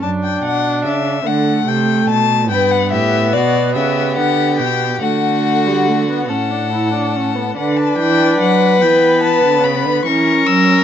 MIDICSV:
0, 0, Header, 1, 5, 480
1, 0, Start_track
1, 0, Key_signature, 2, "major"
1, 0, Tempo, 827586
1, 16, Time_signature, 6, 3, 24, 8
1, 2416, Tempo, 849858
1, 4336, Tempo, 831025
1, 6227, End_track
2, 0, Start_track
2, 0, Title_t, "Violin"
2, 0, Program_c, 0, 40
2, 13, Note_on_c, 0, 81, 61
2, 60, Note_off_c, 0, 81, 0
2, 138, Note_on_c, 0, 79, 64
2, 254, Note_off_c, 0, 79, 0
2, 261, Note_on_c, 0, 78, 84
2, 491, Note_off_c, 0, 78, 0
2, 495, Note_on_c, 0, 76, 85
2, 734, Note_on_c, 0, 78, 84
2, 743, Note_off_c, 0, 76, 0
2, 976, Note_on_c, 0, 79, 84
2, 984, Note_off_c, 0, 78, 0
2, 1212, Note_off_c, 0, 79, 0
2, 1216, Note_on_c, 0, 81, 95
2, 1449, Note_off_c, 0, 81, 0
2, 1453, Note_on_c, 0, 79, 81
2, 1571, Note_on_c, 0, 78, 88
2, 1580, Note_off_c, 0, 79, 0
2, 1688, Note_off_c, 0, 78, 0
2, 1692, Note_on_c, 0, 76, 93
2, 1933, Note_on_c, 0, 74, 92
2, 1942, Note_off_c, 0, 76, 0
2, 2173, Note_off_c, 0, 74, 0
2, 2176, Note_on_c, 0, 76, 81
2, 2413, Note_off_c, 0, 76, 0
2, 2419, Note_on_c, 0, 78, 95
2, 2651, Note_off_c, 0, 78, 0
2, 2657, Note_on_c, 0, 79, 86
2, 2892, Note_off_c, 0, 79, 0
2, 2898, Note_on_c, 0, 78, 77
2, 3606, Note_off_c, 0, 78, 0
2, 3620, Note_on_c, 0, 78, 67
2, 4323, Note_off_c, 0, 78, 0
2, 4340, Note_on_c, 0, 78, 64
2, 4455, Note_on_c, 0, 81, 82
2, 4463, Note_off_c, 0, 78, 0
2, 4574, Note_off_c, 0, 81, 0
2, 4577, Note_on_c, 0, 79, 96
2, 4815, Note_off_c, 0, 79, 0
2, 4821, Note_on_c, 0, 78, 90
2, 5061, Note_on_c, 0, 79, 86
2, 5070, Note_off_c, 0, 78, 0
2, 5294, Note_off_c, 0, 79, 0
2, 5297, Note_on_c, 0, 81, 90
2, 5534, Note_on_c, 0, 83, 87
2, 5543, Note_off_c, 0, 81, 0
2, 5770, Note_off_c, 0, 83, 0
2, 5774, Note_on_c, 0, 85, 85
2, 6012, Note_on_c, 0, 88, 98
2, 6020, Note_off_c, 0, 85, 0
2, 6227, Note_off_c, 0, 88, 0
2, 6227, End_track
3, 0, Start_track
3, 0, Title_t, "Violin"
3, 0, Program_c, 1, 40
3, 1453, Note_on_c, 1, 71, 86
3, 1675, Note_off_c, 1, 71, 0
3, 1694, Note_on_c, 1, 67, 88
3, 1928, Note_off_c, 1, 67, 0
3, 1935, Note_on_c, 1, 66, 70
3, 2170, Note_off_c, 1, 66, 0
3, 2175, Note_on_c, 1, 67, 80
3, 2902, Note_on_c, 1, 66, 88
3, 2911, Note_off_c, 1, 67, 0
3, 3616, Note_on_c, 1, 69, 62
3, 3624, Note_off_c, 1, 66, 0
3, 4334, Note_off_c, 1, 69, 0
3, 4337, Note_on_c, 1, 71, 93
3, 5778, Note_on_c, 1, 70, 101
3, 5786, Note_off_c, 1, 71, 0
3, 6227, Note_off_c, 1, 70, 0
3, 6227, End_track
4, 0, Start_track
4, 0, Title_t, "Viola"
4, 0, Program_c, 2, 41
4, 17, Note_on_c, 2, 62, 78
4, 733, Note_on_c, 2, 57, 75
4, 742, Note_off_c, 2, 62, 0
4, 1450, Note_off_c, 2, 57, 0
4, 1453, Note_on_c, 2, 59, 85
4, 2874, Note_off_c, 2, 59, 0
4, 2898, Note_on_c, 2, 57, 70
4, 3264, Note_on_c, 2, 55, 74
4, 3273, Note_off_c, 2, 57, 0
4, 3382, Note_on_c, 2, 57, 65
4, 3390, Note_off_c, 2, 55, 0
4, 3501, Note_off_c, 2, 57, 0
4, 3504, Note_on_c, 2, 59, 64
4, 3621, Note_on_c, 2, 61, 67
4, 3629, Note_off_c, 2, 59, 0
4, 3739, Note_on_c, 2, 62, 65
4, 3748, Note_off_c, 2, 61, 0
4, 3859, Note_off_c, 2, 62, 0
4, 3862, Note_on_c, 2, 64, 73
4, 3976, Note_off_c, 2, 64, 0
4, 3980, Note_on_c, 2, 62, 64
4, 4105, Note_on_c, 2, 61, 67
4, 4113, Note_off_c, 2, 62, 0
4, 4215, Note_on_c, 2, 59, 63
4, 4224, Note_off_c, 2, 61, 0
4, 4336, Note_off_c, 2, 59, 0
4, 4339, Note_on_c, 2, 62, 81
4, 5040, Note_off_c, 2, 62, 0
4, 5058, Note_on_c, 2, 59, 85
4, 5764, Note_off_c, 2, 59, 0
4, 5780, Note_on_c, 2, 61, 93
4, 6227, Note_off_c, 2, 61, 0
4, 6227, End_track
5, 0, Start_track
5, 0, Title_t, "Cello"
5, 0, Program_c, 3, 42
5, 17, Note_on_c, 3, 42, 63
5, 247, Note_off_c, 3, 42, 0
5, 251, Note_on_c, 3, 47, 63
5, 489, Note_on_c, 3, 49, 74
5, 498, Note_off_c, 3, 47, 0
5, 728, Note_off_c, 3, 49, 0
5, 731, Note_on_c, 3, 50, 80
5, 963, Note_off_c, 3, 50, 0
5, 966, Note_on_c, 3, 48, 71
5, 1204, Note_off_c, 3, 48, 0
5, 1211, Note_on_c, 3, 47, 76
5, 1453, Note_on_c, 3, 43, 76
5, 1462, Note_off_c, 3, 47, 0
5, 1692, Note_on_c, 3, 45, 78
5, 1700, Note_off_c, 3, 43, 0
5, 1934, Note_on_c, 3, 47, 87
5, 1943, Note_off_c, 3, 45, 0
5, 2177, Note_on_c, 3, 49, 79
5, 2186, Note_off_c, 3, 47, 0
5, 2417, Note_on_c, 3, 50, 78
5, 2426, Note_off_c, 3, 49, 0
5, 2657, Note_on_c, 3, 47, 76
5, 2665, Note_off_c, 3, 50, 0
5, 2897, Note_on_c, 3, 50, 70
5, 2905, Note_off_c, 3, 47, 0
5, 3621, Note_on_c, 3, 45, 59
5, 3630, Note_off_c, 3, 50, 0
5, 4338, Note_off_c, 3, 45, 0
5, 4343, Note_on_c, 3, 50, 74
5, 4565, Note_off_c, 3, 50, 0
5, 4579, Note_on_c, 3, 52, 77
5, 4815, Note_off_c, 3, 52, 0
5, 4819, Note_on_c, 3, 54, 79
5, 5060, Note_on_c, 3, 52, 75
5, 5069, Note_off_c, 3, 54, 0
5, 5419, Note_off_c, 3, 52, 0
5, 5423, Note_on_c, 3, 50, 67
5, 5537, Note_on_c, 3, 49, 72
5, 5545, Note_off_c, 3, 50, 0
5, 5658, Note_on_c, 3, 50, 71
5, 5667, Note_off_c, 3, 49, 0
5, 5772, Note_off_c, 3, 50, 0
5, 5776, Note_on_c, 3, 52, 76
5, 6012, Note_off_c, 3, 52, 0
5, 6019, Note_on_c, 3, 54, 81
5, 6227, Note_off_c, 3, 54, 0
5, 6227, End_track
0, 0, End_of_file